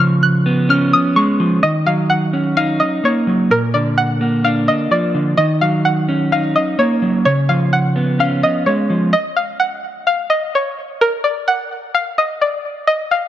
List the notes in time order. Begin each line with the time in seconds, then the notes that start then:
Already playing: C#3
0.00 F3 F6
0.23 F#6
0.46 B3
0.69 C#4 F6
0.93 D#6
1.16 G#3 C#6
1.40 F3
1.63 D#3 D#5
1.86 F#3 F5
2.10 F#5
2.33 C#4
2.57 D#4 F5
2.80 D#5
3.04 A#3 C#5
3.27 F#3
3.50 A#2 A#4
3.74 D3 D5
3.98 F#5
4.21 A#3
4.44 D4 F5
4.68 D#5
4.91 F3 D5
5.14 D3
5.37 D#3 D#5
5.61 F#3 F5
5.85 F#5
6.09 C#4
6.32 D#4 F5
6.56 D#5
6.79 A#3 C#5
7.02 F#3
7.25 C#3 C#5
7.49 F3 F5
7.73 F#5
7.96 B3
8.19 C#4 F5
8.43 D#5
8.66 G#3 C#5
8.90 F3
9.13 D#5
9.37 F5
9.60 F#5
10.07 F5
10.30 D#5
10.55 C#5
11.01 A#4
11.24 D5
11.48 F#5
11.95 F5
12.18 D#5
12.41 D5
12.87 D#5
13.11 F5